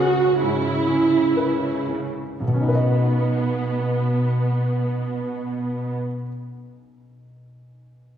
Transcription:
Already playing: grand piano C#2 C#4 B4, cello section C#3, harp C#3 C#4 E4 B4, viola section F#4
0.42 grand piano G#2, viola section E4
0.88 grand piano C#4
1.37 grand piano B4
1.89 grand piano C#4
2.41 grand piano B1, cello section B2, harp B2, viola section B3
2.48 grand piano B2, harp B3
2.54 grand piano C#4, harp C#4
2.61 grand piano D#4, harp D#4
2.68 grand piano B4, harp B4
2.75 grand piano D#5, harp D#5

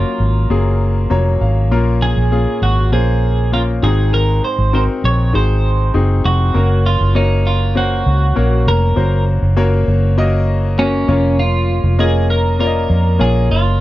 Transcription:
Already playing: grand piano F#3 A#3 C#4 F#4 A#4, clean electric guitar F4
0.20 fingered electric bass G#1
0.50 fingered electric bass F#1, grand piano F#3 A#3 C#4 G#4
1.10 fingered electric bass F1, grand piano F#3 A#3 C#4 C#5 A#5
1.41 fingered electric bass G#1, grand piano F5
1.71 fingered electric bass A#1, grand piano A#2 A#3 C#4 F4 A#4
2.02 clean electric guitar G#4
2.17 fingered electric bass A#1
2.31 grand piano A#3 C#4 F4 G#4
2.62 fingered electric bass G#1, clean electric guitar F#4
2.92 fingered electric bass A#1, grand piano A#3 C#4 F4 C5, clean electric guitar G#4
3.52 grand piano A#3 C#4 F4 A#4, clean electric guitar F4
3.83 fingered electric bass G#1, grand piano G#2 C4 D#4 F#4 G#4, clean electric guitar G#4
4.14 clean electric guitar A#4
4.44 clean electric guitar C5
4.58 fingered electric bass G#1
4.73 grand piano C4 D#4 F#4 A#4, clean electric guitar C5
5.04 fingered electric bass A#1, clean electric guitar C#5
5.33 fingered electric bass G#1, grand piano C4 D#4 F#4 G#4, clean electric guitar C5
5.94 fingered electric bass F#1, grand piano C4 D#4 F#4 G#4
6.25 fingered electric bass F1, clean electric guitar F#4
6.54 fingered electric bass F#1, grand piano A#3 C#4 F#4 A#4 C#5
6.86 clean electric guitar F4
7.01 fingered electric bass F#1
7.15 grand piano A#3 C#4 F#4 A#4 C#5, clean electric guitar D#4
7.47 clean electric guitar F4
7.75 grand piano A#3 C#4 F#4 A#4 C5, clean electric guitar F#4
8.06 fingered electric bass C#2
8.36 fingered electric bass A#1, grand piano A#3 C#4 F#4 A#4 C#5
8.67 fingered electric bass F1, clean electric guitar A#4
8.96 fingered electric bass F#1, grand piano A#3 C#4 F#4 A#4 C5
9.42 fingered electric bass F#1
9.56 grand piano A#3 C#4 F#4 A#4 C#5
9.88 fingered electric bass F#1
10.18 grand piano A#3 C#4 F#4 A#4 D#5
10.78 grand piano A#3 C#4 F#4 A#4 C#5, clean electric guitar C#4
11.08 fingered electric bass F1, grand piano A#3 C#4 F4 A#4 C#5
11.39 clean electric guitar F4
11.84 fingered electric bass F1
11.99 grand piano A#3 C#4 F4 A#4 D#5, clean electric guitar G#4
12.30 clean electric guitar A#4
12.59 grand piano A#3 C#4 F4 A#4 D5, clean electric guitar A#4
12.67 grand piano D#5
12.90 fingered electric bass F2
13.19 fingered electric bass A#1, grand piano A#3 C#4 F4 A#4 C#5, clean electric guitar G#4
13.50 fingered electric bass F#1, clean electric guitar F4

